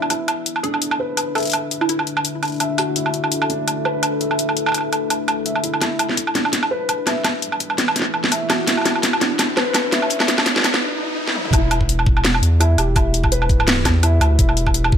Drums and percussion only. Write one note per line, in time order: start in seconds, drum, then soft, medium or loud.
0.02 low woodblock soft
0.10 closed hi-hat medium
0.10 low woodblock soft
0.28 closed hi-hat medium
0.28 low woodblock medium
0.46 closed hi-hat medium
0.56 low woodblock soft
0.64 closed hi-hat medium
0.74 low woodblock soft
0.82 closed hi-hat medium
0.91 low woodblock medium
1.17 closed hi-hat medium
1.17 low woodblock soft
1.35 closed hi-hat soft
1.35 low woodblock soft
1.38 closed hi-hat soft
1.40 closed hi-hat soft
1.43 closed hi-hat soft
1.45 closed hi-hat soft
1.47 closed hi-hat soft
1.50 closed hi-hat soft
1.52 closed hi-hat medium
1.53 closed hi-hat medium
1.53 low woodblock medium
1.71 closed hi-hat medium
1.81 low woodblock soft
1.89 closed hi-hat medium
1.99 low woodblock soft
2.07 closed hi-hat medium
2.17 low woodblock medium
2.25 closed hi-hat medium
2.43 closed hi-hat soft
2.43 low woodblock soft
2.45 closed hi-hat soft
2.48 closed hi-hat soft
2.50 closed hi-hat soft
2.52 closed hi-hat soft
2.54 closed hi-hat soft
2.56 closed hi-hat soft
2.58 closed hi-hat soft
2.60 closed hi-hat medium
2.60 low woodblock soft
2.78 closed hi-hat medium
2.78 low woodblock medium
2.96 closed hi-hat medium
3.06 low woodblock soft
3.14 closed hi-hat medium
3.24 low woodblock soft
3.32 closed hi-hat medium
3.42 low woodblock medium
3.50 closed hi-hat medium
3.68 closed hi-hat medium
3.68 low woodblock soft
3.85 low woodblock soft
4.03 closed hi-hat medium
4.03 low woodblock medium
4.21 closed hi-hat medium
4.31 low woodblock soft
4.39 closed hi-hat medium
4.49 low woodblock soft
4.57 closed hi-hat medium
4.66 low woodblock medium
4.69 low woodblock medium
4.74 closed hi-hat medium
4.74 low woodblock soft
4.78 low woodblock soft
4.81 low woodblock soft
4.93 closed hi-hat medium
4.93 low woodblock medium
5.10 closed hi-hat medium
5.10 low woodblock medium
5.28 closed hi-hat soft
5.28 low woodblock medium
5.46 closed hi-hat medium
5.56 low woodblock medium
5.64 closed hi-hat medium
5.74 low woodblock medium
5.82 kick medium
5.82 snare soft
5.82 closed hi-hat medium
5.82 low woodblock soft
5.99 closed hi-hat medium
5.99 low woodblock medium
6.10 snare soft
6.17 kick medium
6.17 closed hi-hat medium
6.27 low woodblock medium
6.35 snare medium
6.35 closed hi-hat medium
6.45 low woodblock medium
6.53 kick medium
6.53 snare medium
6.53 closed hi-hat medium
6.63 low woodblock medium
6.89 kick medium
6.89 closed hi-hat medium
6.89 low woodblock medium
7.07 snare medium
7.07 closed hi-hat medium
7.07 low woodblock soft
7.25 kick medium
7.25 snare medium
7.25 closed hi-hat medium
7.25 low woodblock medium
7.42 closed hi-hat medium
7.52 low woodblock medium
7.60 kick medium
7.60 closed hi-hat medium
7.70 low woodblock medium
7.78 snare medium
7.78 closed hi-hat medium
7.88 low woodblock medium
7.96 kick loud
7.96 snare soft
7.96 closed hi-hat medium
8.00 snare soft
8.02 snare medium
8.14 low woodblock medium
8.24 snare medium
8.32 kick medium
8.32 closed hi-hat medium
8.32 low woodblock medium
8.50 snare medium
8.50 closed hi-hat medium
8.50 low woodblock medium
8.67 kick medium
8.67 snare medium
8.67 closed hi-hat medium
8.77 low woodblock soft
8.81 low woodblock soft
8.86 snare medium
8.86 closed hi-hat medium
8.86 low woodblock soft
8.91 low woodblock soft
8.96 low woodblock medium
9.03 kick loud
9.03 snare medium
9.03 closed hi-hat medium
9.13 low woodblock medium
9.21 snare medium
9.21 closed hi-hat medium
9.39 kick loud
9.39 snare medium
9.39 closed hi-hat medium
9.39 low woodblock medium
9.57 snare medium
9.57 low woodblock medium
9.74 kick loud
9.74 snare medium
9.74 closed hi-hat medium
9.74 low woodblock medium
9.92 snare medium
9.92 closed hi-hat medium
10.02 low woodblock medium
10.10 kick loud
10.10 closed hi-hat medium
10.20 snare medium
10.20 low woodblock soft
10.28 snare medium
10.28 closed hi-hat medium
10.38 snare medium
10.38 low woodblock medium
10.46 kick loud
10.46 snare loud
10.46 closed hi-hat medium
10.56 snare medium
10.58 snare medium
10.60 snare medium
10.62 snare soft
10.64 snare loud
10.64 closed hi-hat medium
10.64 low woodblock medium
10.74 snare medium
11.28 snare medium
11.35 mid tom medium
11.45 mid tom medium
11.53 kick loud
11.53 closed hi-hat medium
11.53 low woodblock medium
11.71 closed hi-hat medium
11.71 low woodblock medium
11.81 kick medium
11.89 closed hi-hat medium
11.99 low woodblock medium
12.06 kick loud
12.17 low woodblock medium
12.25 snare loud
12.25 closed hi-hat medium
12.34 low woodblock medium
12.43 closed hi-hat medium
12.61 closed hi-hat medium
12.61 low woodblock medium
12.78 closed hi-hat medium
12.78 low woodblock medium
12.96 kick loud
12.96 closed hi-hat medium
12.96 low woodblock medium
13.14 closed hi-hat medium
13.24 kick medium
13.24 low woodblock medium
13.32 closed hi-hat medium
13.42 low woodblock medium
13.49 kick loud
13.49 closed hi-hat soft
13.60 low woodblock medium
13.68 snare loud
13.68 closed hi-hat medium
13.85 kick medium
13.85 snare medium
13.85 closed hi-hat medium
13.85 low woodblock medium
14.03 closed hi-hat medium
14.03 low woodblock medium
14.21 closed hi-hat medium
14.21 low woodblock medium
14.39 kick loud
14.39 closed hi-hat medium
14.49 low woodblock medium
14.57 closed hi-hat medium
14.67 kick medium
14.67 low woodblock medium
14.74 closed hi-hat medium
14.84 low woodblock medium
14.92 kick loud